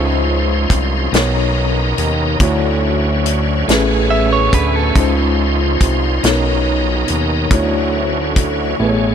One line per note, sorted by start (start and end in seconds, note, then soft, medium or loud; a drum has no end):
0.00 0.67 C#2 loud
0.00 1.12 F3 medium
0.00 1.13 G#3 medium
0.00 1.13 C#4 medium
0.00 2.37 C#4 medium
0.00 1.11 D#4 medium
0.00 1.13 D#4 medium
0.00 1.14 F4 medium
0.00 1.12 C5 medium
0.00 1.15 C5 medium
0.70 1.09 C2 medium
0.70 kick medium
0.70 closed hi-hat medium
1.12 1.94 B1 loud
1.12 2.40 B2 medium
1.12 2.39 B3 medium
1.12 2.40 B3 medium
1.12 2.39 D#4 medium
1.12 2.41 D#4 medium
1.12 2.39 A#4 medium
1.12 2.41 A#4 medium
1.12 snare loud
1.12 closed hi-hat medium
1.16 2.42 C#5 medium
1.98 2.37 D#2 medium
1.98 closed hi-hat medium
2.39 3.64 D2 loud
2.39 3.67 D3 medium
2.39 3.67 F#3 medium
2.39 3.67 A3 medium
2.39 3.67 C#4 medium
2.39 3.67 E4 medium
2.39 3.68 E4 medium
2.39 3.69 F#4 medium
2.39 3.69 C#5 medium
2.39 kick loud
2.39 closed hi-hat medium
3.26 closed hi-hat medium
3.67 4.49 A1 loud
3.67 4.95 A2 medium
3.67 4.94 A3 medium
3.67 4.96 A3 medium
3.67 4.94 B3 medium
3.67 7.47 C#4 medium
3.67 4.95 C#4 medium
3.67 4.94 G#4 medium
3.67 4.97 G#4 medium
3.67 snare loud
3.67 closed hi-hat medium
3.72 4.97 B4 medium
4.10 4.31 E5 medium
4.33 4.52 C#5 medium
4.53 4.92 D2 medium
4.53 4.76 B4 medium
4.53 kick loud
4.53 closed hi-hat medium
4.76 5.16 A4 medium
4.95 5.77 C#2 loud
4.95 6.22 F3 medium
4.95 6.24 G#3 medium
4.95 6.24 C#4 medium
4.95 6.22 D#4 medium
4.95 6.24 D#4 medium
4.95 6.22 C5 medium
4.95 kick loud
4.95 closed hi-hat medium
4.99 6.25 F4 medium
4.99 6.26 C5 medium
5.81 6.20 C2 medium
5.81 kick loud
5.81 closed hi-hat medium
6.22 7.05 B1 loud
6.22 7.51 B2 medium
6.22 7.50 B3 medium
6.22 7.51 B3 medium
6.22 7.50 D#4 medium
6.22 7.52 D#4 medium
6.22 7.49 A#4 medium
6.22 7.52 A#4 medium
6.22 snare loud
6.22 closed hi-hat medium
6.27 7.53 C#5 medium
7.08 7.48 D#2 medium
7.08 closed hi-hat medium
7.50 8.75 D2 loud
7.50 8.78 D3 medium
7.50 8.77 D3 medium
7.50 8.77 F#3 medium
7.50 8.79 A3 medium
7.50 9.15 C#4 medium
7.50 8.77 E4 medium
7.50 8.79 E4 medium
7.50 8.80 F#4 medium
7.50 kick loud
7.50 closed hi-hat medium
7.54 8.80 C#5 medium
8.36 kick loud
8.36 closed hi-hat medium
8.79 9.15 A1 loud
8.79 9.15 A2 medium
8.79 9.15 B2 medium
8.79 9.15 A3 medium
8.79 9.15 B3 medium
8.79 9.15 G#4 medium
8.79 8.87 B4 medium
8.89 9.15 C#5 medium